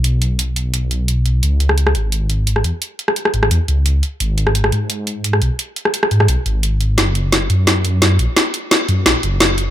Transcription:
<<
  \new Staff \with { instrumentName = "Detuned saw bass" } { \clef bass \time 4/4 \key cis \dorian \tempo 4 = 173 b,,1 | cis,4. gis,,2 e,8 | r4. gis,,8 e,8 cis,4 r8 | gis,,4. gis,2 b,,8 |
r4. gis,8 b,,8 gis,,4. | fis,,4. fis,2 ais,,8 | r4. fis,8 ais,,8 fis,,4. | }
  \new DrumStaff \with { instrumentName = "Drums" } \drummode { \time 4/4 hh8 hh8 hh8 hh8 hh8 hh8 hh8 hh8 | hh8 hh16 ss16 hh16 ss16 hh8 hh8 hh8 hh16 ss16 hh8 | hh8 hh16 ss16 hh16 ss16 hh16 ss16 hh8 hh8 hh8 hh8 | hh8 hh16 ss16 hh16 ss16 hh8 hh8 hh8 hh16 ss16 hh8 |
hh8 hh16 ss16 hh16 ss16 hh16 ss16 hh8 hh8 hh8 hh8 | <hh sn>8 hh8 <hh sn>8 hh8 <hh sn>8 hh8 <hh sn>8 hh8 | <hh sn>8 hh8 <hh sn>8 hh8 <hh sn>8 hh8 <hh sn>8 hh8 | }
>>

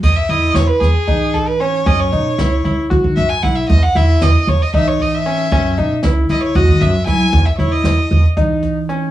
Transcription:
<<
  \new Staff \with { instrumentName = "Violin" } { \time 7/8 \key e \major \tempo 4 = 115 dis''16 e''16 dis''8 cis''16 b'16 gis'4 a'16 b'16 cis''8 | dis''16 cis''4. r8. e''16 gis''16 fis''16 e''16 | dis''16 fis''16 e''8 dis''8 cis''16 dis''16 e''16 cis''16 dis''16 e''8.~ | e''8. r8. dis''16 cis''16 dis''8 e''8 gis''8~ |
gis''16 e''16 cis''16 dis''4 r4. r16 | }
  \new Staff \with { instrumentName = "Grand piano" } { \time 7/8 \key e \major r8 e'4 r8 dis'4 cis'8 | cis'8 dis'8 e'8 e'8 fis'4 e'8 | r8 e'4 r8 dis'4 cis'8 | cis'8 dis'8 e'8 e'8 fis'4 e'8 |
r8 e'4 r8 dis'4 cis'8 | }
  \new Staff \with { instrumentName = "Upright bass" } { \clef bass \time 7/8 \key e \major e,16 r16 e,8 e,16 r16 e,16 r16 e4. | fis,8 b,16 r16 cis,8 cis,16 r16 e,16 dis16 fis,16 r16 b,,16 r16 | e,16 r16 e,8 e,16 r16 e,16 r16 e4. | fis,8 b,16 r16 cis,8 cis,16 r16 e,16 dis16 fis,16 r16 fis16 r16 |
e,16 r16 e,8 e,16 r16 e,16 r16 e4. | }
  \new DrumStaff \with { instrumentName = "Drums" } \drummode { \time 7/8 <cymc bd>8 hh8 <hh sn>8 <hh sn>8 <hh bd>8 <hh bd>8 hh8 | <hh bd>8 hh8 <hh sn>8 hh8 <hh bd>8 <hh bd>8 <hh bd>8 | <hh bd>8 <hh sn>8 <hh sn>8 hh8 <hh bd>8 <hh bd>8 hh8 | <hh bd>8 hh8 <hh sn>8 <hh sn>8 <hh bd>8 <hh bd sn>8 <hh bd sn>8 |
<hh bd>8 hh8 <hh sn>8 hh8 <hh bd>8 <hh bd>8 hh8 | }
>>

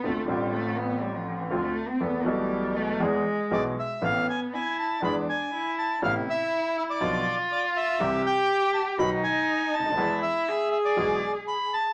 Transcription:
<<
  \new Staff \with { instrumentName = "Bandoneon" } { \time 4/4 \key e \phrygian \tempo 4 = 121 r1 | r2. d''8 e''8 | \key a \minor f''8 gis''8 gis''8 a''8 b''8 gis''4 a''8 | f''8 e''4 e''16 d''4 r16 d''8 e''8~ |
e''8 g''4 a''8 b''8 gis''4 a''8~ | a''8 e''4 e''16 d''4 r16 b''8 a''8 | }
  \new Staff \with { instrumentName = "Cello" } { \time 4/4 \key e \phrygian a8 g8 a8 b8 g16 f8 e16 f16 a8 c'16 | b8 g4 a8 gis4. r8 | \key a \minor b4 e'4 d'4 e'4 | e'2 f'2 |
g'2 dis'2 | e'4 gis'2~ gis'8 r8 | }
  \new Staff \with { instrumentName = "Grand piano" } { \clef bass \time 4/4 \key e \phrygian <d, d a c' f'>8 <a,, a, d a c' f'>2~ <a,, a, d a c' f'>8 <d, d a c' f'>8 r8 | <e, e a b a'>8 <b,, b, e a b a'>4. <e, e gis b gis'>8 r8 <b,, b, e gis b gis'>8 r8 | \key a \minor <a,, a, e a b a'>8 r4. <e, e gis b gis'>8 r4. | <a,, a, c a b e'>8 r4. <b,, b, d f b f'>8 r4. |
<c, c e g c' g'>8 r4. <b,, b, dis fis b fis'>8 r4 r32 cis,32 d,32 dis,32 | <e, e gis b gis'>8 r4. <b,, b, e gis b gis'>8 r4. | }
  \new Staff \with { instrumentName = "Double bass" } { \clef bass \time 4/4 \key e \phrygian d,8 a,,2~ a,,8 d,8 r8 | e,8 b,,4. e,8 r8 b,,8 r8 | \key a \minor a,,8 r4. e,8 r4. | a,,8 r4. b,,8 r4. |
c,8 r4. b,,8 r4 d,8 | e,8 r4. b,,8 r4. | }
>>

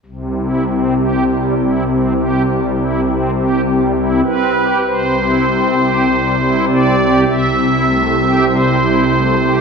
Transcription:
<<
  \new Staff \with { instrumentName = "Pipe organ" } { \time 4/4 \key c \major \tempo 4 = 50 << { r2. r8 b'8 | c''4. d''8 e''4 c''4 | } \\ { c16 e'16 c'16 g'16 g16 e'16 c'16 g'16 g16 e'16 c'16 g'16 g16 e'16 c'16 g'16 | c16 e'16 c'16 g'16 g16 e'16 c'16 g'16 c16 e'16 a16 g'16 g16 e'16 a16 g'16 | } >> }
  \new Staff \with { instrumentName = "Pipe organ" } { \clef bass \time 4/4 \key c \major c,2.~ c,8 r8 | c,2 c,2 | }
>>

